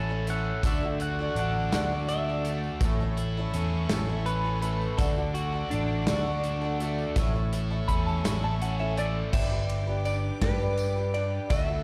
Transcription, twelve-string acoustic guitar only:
0.00 0.10 A3 soft
0.09 0.26 A3 soft
0.09 0.27 C#4 medium
0.09 0.28 E4 medium
0.09 0.28 A4 medium
0.28 0.63 A3 medium
0.28 0.64 C#4 medium
0.28 0.65 E4 medium
0.28 0.65 A4 medium
0.64 0.82 D3 medium
0.64 0.82 A3 medium
0.64 0.83 D4 medium
0.64 0.83 F#4 loud
0.64 0.81 A4 loud
0.83 1.20 D4 soft
0.83 1.19 F#4 soft
0.83 1.18 A4 soft
1.19 1.38 D4 soft
1.19 1.37 F#4 medium
1.19 1.37 A4 medium
1.38 1.73 A3 medium
1.38 1.73 D4 medium
1.38 1.74 F#4 medium
1.38 1.74 A4 medium
1.74 1.91 D3 medium
1.74 1.92 A3 medium
1.74 1.92 D4 medium
1.74 1.92 F#4 loud
1.74 1.91 A4 loud
1.92 2.29 D4 soft
1.92 2.29 F#4 soft
1.92 2.28 A4 medium
2.29 2.47 D4 soft
2.29 2.47 F#4 soft
2.29 2.46 A4 medium
2.47 2.82 A3 medium
2.47 2.83 D4 medium
2.47 2.83 F#4 medium
2.47 2.84 A4 medium
2.83 3.00 A2 medium
2.83 3.01 E3 medium
2.83 3.01 A3 medium
2.83 3.01 C#4 medium
2.83 3.00 E4 medium
2.83 2.99 A4 medium
3.00 3.38 A3 soft
3.00 3.37 C#4 soft
3.00 3.37 E4 medium
3.00 3.36 A4 medium
3.37 3.55 A3 medium
3.37 3.55 C#4 medium
3.37 3.55 E4 medium
3.37 3.55 A4 medium
3.56 3.90 A3 medium
3.56 3.91 C#4 medium
3.56 3.91 E4 medium
3.56 3.91 A4 medium
3.91 4.09 A2 medium
3.91 4.09 E3 medium
3.91 4.09 A3 medium
3.91 4.09 C#4 medium
3.91 4.09 E4 loud
3.91 4.08 A4 loud
4.09 4.46 A3 medium
4.09 4.45 C#4 soft
4.09 4.44 E4 medium
4.09 4.44 A4 medium
4.45 4.61 A3 soft
4.45 4.62 C#4 medium
4.45 4.62 E4 soft
4.45 4.63 A4 medium
4.62 4.97 A3 medium
4.62 4.99 C#4 medium
4.62 4.99 E4 medium
4.62 4.98 A4 medium
4.98 5.16 D3 medium
4.98 5.17 A3 medium
4.98 5.17 D4 medium
4.98 5.16 F#4 medium
4.98 5.15 A4 medium
5.16 5.54 D4 soft
5.16 5.53 F#4 soft
5.16 5.51 A4 medium
5.53 5.72 D4 soft
5.53 5.72 F#4 soft
5.53 5.71 A4 medium
5.72 6.08 A3 medium
5.72 6.08 D4 medium
5.72 6.08 F#4 medium
5.72 6.09 A4 medium
6.08 6.26 D3 medium
6.08 6.26 A3 medium
6.08 6.26 D4 medium
6.08 6.26 F#4 medium
6.08 6.24 A4 medium
6.26 6.63 D4 soft
6.26 6.62 F#4 soft
6.26 6.60 A4 medium
6.61 6.80 D4 medium
6.61 6.81 F#4 medium
6.61 6.80 A4 medium
6.80 7.16 A3 medium
6.80 7.17 D4 medium
6.80 7.17 F#4 medium
6.80 7.18 A4 medium
7.17 7.35 A2 medium
7.17 7.35 E3 loud
7.17 7.35 A3 loud
7.17 7.34 C#4 medium
7.17 7.33 E4 loud
7.17 7.32 A4 loud
7.33 7.72 A3 soft
7.33 7.71 C#4 medium
7.33 7.70 E4 soft
7.33 7.69 A4 medium
7.70 7.88 A3 soft
7.70 7.88 C#4 soft
7.70 7.89 E4 medium
7.70 7.89 A4 medium
7.89 8.24 A3 medium
7.89 8.25 C#4 medium
7.89 8.25 E4 medium
7.89 8.25 A4 medium
8.24 8.43 A2 medium
8.24 8.43 E3 medium
8.24 8.43 A3 medium
8.24 8.43 C#4 medium
8.24 8.42 E4 medium
8.24 8.41 A4 medium
8.42 8.80 A3 medium
8.42 8.79 C#4 medium
8.42 8.79 E4 soft
8.42 8.78 A4 medium
8.79 8.95 A3 soft
8.79 8.98 C#4 medium
8.79 8.98 E4 medium
8.79 8.97 A4 medium
8.97 9.32 A3 medium
8.97 9.33 E4 medium
8.97 9.34 A4 medium
9.33 9.51 G3 medium
9.33 9.52 D4 medium
9.33 9.51 G4 medium
9.33 9.49 B4 medium
9.51 9.88 D4 soft
9.51 9.87 G4 soft
9.51 9.86 B4 soft
9.87 10.04 D4 soft
9.87 10.05 G4 medium
9.87 10.05 B4 medium
10.04 10.40 G3 medium
10.04 10.41 D4 medium
10.04 10.41 G4 medium
10.04 10.42 B4 medium
10.41 10.60 G3 medium
10.41 10.60 D4 medium
10.41 10.59 G4 medium
10.41 10.57 B4 medium
10.58 10.97 D4 soft
10.58 10.96 G4 medium
10.58 10.95 B4 medium
10.96 11.13 D4 soft
10.96 11.14 G4 soft
10.96 11.14 B4 medium
11.14 11.50 G3 medium
11.14 11.50 D4 medium
11.14 11.51 G4 medium
11.14 11.51 B4 medium
11.49 11.68 D3 medium
11.49 11.68 A3 medium
11.49 11.69 E4 medium
11.49 11.68 F#4 medium
11.49 11.67 A4 loud
11.68 11.83 E4 soft
11.68 11.83 F#4 soft
11.68 11.83 A4 soft

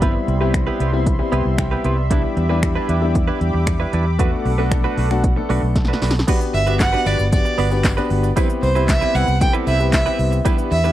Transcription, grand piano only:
0.02 0.32 G3 medium
0.02 0.32 B3 medium
0.02 0.32 C4 medium
0.02 0.33 E4 loud
0.41 0.82 G3 medium
0.41 0.82 B3 medium
0.41 0.82 C4 medium
0.41 0.82 E4 medium
0.93 1.13 G3 medium
0.93 1.14 B3 medium
0.93 1.14 C4 medium
0.93 1.14 E4 loud
1.19 1.90 G3 medium
1.19 1.90 B3 medium
1.19 1.91 C4 medium
1.19 1.91 E4 loud
1.32 1.57 E5 medium
1.58 1.83 G5 medium
1.85 2.09 C6 medium
2.10 2.41 G3 medium
2.10 2.41 B3 medium
2.10 2.41 D4 medium
2.10 2.41 E4 medium
2.50 2.90 G3 medium
2.50 2.90 B3 medium
2.50 2.91 D4 medium
2.50 2.91 E4 loud
3.02 3.83 G3 medium
3.02 3.83 B3 medium
3.02 3.83 D4 medium
3.02 3.83 E4 medium
4.19 4.50 A3 medium
4.19 4.50 B3 medium
4.19 4.50 D4 medium
4.19 4.50 F#4 loud
4.58 4.99 A3 medium
4.58 4.99 B3 medium
4.58 4.99 D4 medium
4.58 4.99 A4 loud
5.10 5.31 A3 medium
5.10 5.31 B3 medium
5.10 5.31 D4 medium
5.10 5.31 F#4 loud
5.37 6.08 A3 medium
5.37 6.08 B3 medium
5.37 6.08 D4 medium
5.37 6.08 A4 loud
5.76 6.24 A5 medium
6.28 6.58 B3 medium
6.28 6.58 D4 medium
6.28 6.59 F#4 medium
6.28 6.59 G4 medium
6.28 6.59 B4 loud
6.67 6.87 B3 medium
6.67 6.87 D4 medium
6.67 6.87 F#4 medium
6.67 6.88 G4 medium
6.67 6.88 B4 medium
6.93 7.24 B3 medium
6.93 7.24 D4 medium
6.93 7.24 F#4 medium
6.93 7.24 G4 medium
6.93 7.24 B4 medium
7.32 7.63 B3 medium
7.32 7.63 D4 medium
7.32 7.63 F#4 medium
7.32 7.63 G4 medium
7.32 7.63 B4 medium
7.71 7.92 B3 medium
7.71 7.92 D4 medium
7.71 7.92 F#4 medium
7.71 7.92 G4 medium
7.71 7.92 B4 medium
7.97 8.28 B3 loud
7.97 8.28 D4 medium
7.97 8.28 F#4 medium
7.97 8.28 G4 medium
7.97 8.28 B4 loud
8.36 8.67 B3 medium
8.36 8.67 C4 medium
8.36 8.67 E4 medium
8.36 8.67 G4 medium
8.36 8.67 B4 loud
8.76 8.96 B3 medium
8.76 8.96 C4 medium
8.76 8.96 E4 medium
8.76 8.96 G4 medium
8.76 8.96 B4 medium
9.02 9.32 B3 medium
9.02 9.32 C4 medium
9.02 9.32 E4 medium
9.02 9.32 G4 medium
9.02 9.32 B4 medium
9.41 9.71 B3 medium
9.41 9.71 C4 medium
9.41 9.72 E4 medium
9.41 9.72 G4 medium
9.41 9.72 A4 medium
9.80 10.00 B3 medium
9.80 10.00 C4 medium
9.80 10.00 E4 medium
9.80 10.01 G4 medium
9.80 10.01 B4 medium
10.06 10.37 B3 medium
10.06 10.37 C4 medium
10.06 10.37 E4 medium
10.06 10.37 G4 medium
10.06 10.37 B4 medium
10.45 10.76 B3 loud
10.45 10.76 D4 medium
10.45 10.76 E4 medium
10.45 10.76 G4 medium
10.45 10.76 B4 loud
10.84 10.92 B3 medium
10.84 10.92 D4 medium
10.84 10.92 E4 medium
10.84 10.92 G4 medium
10.84 10.92 B4 medium

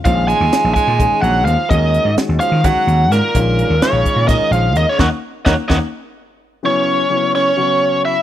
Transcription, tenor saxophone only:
0.05 0.27 F3 medium
0.28 0.72 G#3 medium
0.76 1.20 G#3 medium
1.23 1.45 F#3 medium
1.46 1.68 F3 medium
1.71 2.14 D#3 medium
2.41 2.63 F3 medium
2.64 3.08 F#3 medium
3.13 3.78 A#2 medium
3.83 4.26 C#3 medium
4.29 4.51 D#3 medium
4.54 4.75 F3 medium
4.76 4.91 D#3 medium
4.90 4.99 C#3 medium
5.00 5.06 D#3 medium
5.46 5.52 D#3 medium
5.70 5.76 D#3 medium
6.65 7.31 C#4 medium
7.35 8.01 C#4 medium
8.07 8.22 E4 medium

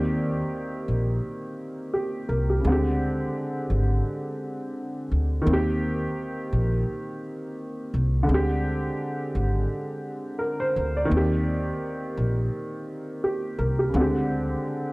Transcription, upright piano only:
0.00 2.57 D#3 medium
0.00 2.59 A#3 medium
0.00 2.61 C4 medium
0.00 1.92 G4 medium
0.00 2.66 D5 medium
1.94 2.27 G4 medium
2.29 2.48 A#4 medium
2.50 2.70 G4 medium
2.60 2.70 C#3 medium
2.60 5.43 G#3 medium
2.67 5.44 D3 medium
2.67 5.45 C4 medium
2.72 5.46 G4 medium
5.42 8.23 D#3 medium
5.42 8.24 A#3 medium
5.49 8.26 C4 medium
5.49 8.28 G4 medium
8.23 10.34 D3 medium
8.23 10.35 G#3 medium
8.30 10.38 C4 medium
8.30 10.39 G4 loud
10.39 10.59 A#4 medium
10.60 10.94 C5 medium
10.97 11.30 D5 medium
11.05 13.87 D#3 medium
11.05 13.89 A#3 medium
11.13 13.91 C4 medium
11.13 13.22 G4 medium
13.24 13.57 G4 medium
13.59 13.77 A#4 medium
13.79 14.00 G4 medium
13.89 13.99 C#3 medium
13.93 14.93 D3 medium
13.93 14.93 G#3 medium
13.93 14.93 C4 medium
14.01 14.93 G4 medium

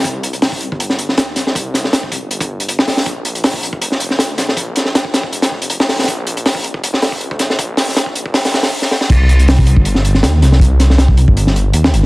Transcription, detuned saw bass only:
0.04 0.69 C2 loud
0.72 1.19 G1 medium
1.17 1.38 D#2 medium
1.36 1.54 C2 loud
1.55 2.20 C2 loud
2.22 2.89 G1 medium
2.87 3.05 C2 medium
3.06 3.71 A#1 loud
3.73 4.21 F1 medium
4.19 4.40 D2 medium
4.38 4.55 A#1 loud
4.57 5.22 A#1 loud
5.23 5.91 F1 medium
5.89 6.06 A#1 medium
6.08 6.73 A#1 loud
6.74 7.23 F1 medium
7.21 7.42 D2 medium
7.40 7.57 A#1 loud
7.59 8.24 A#1 loud
8.26 8.71 F1 medium
9.10 9.75 C2 loud
9.76 10.25 G1 medium
10.23 10.43 D#2 medium
10.42 10.59 C2 loud
10.60 11.25 C2 loud
11.28 11.73 G1 medium
11.74 11.94 D#2 medium
11.93 12.02 G1 loud
12.03 12.06 G1 medium

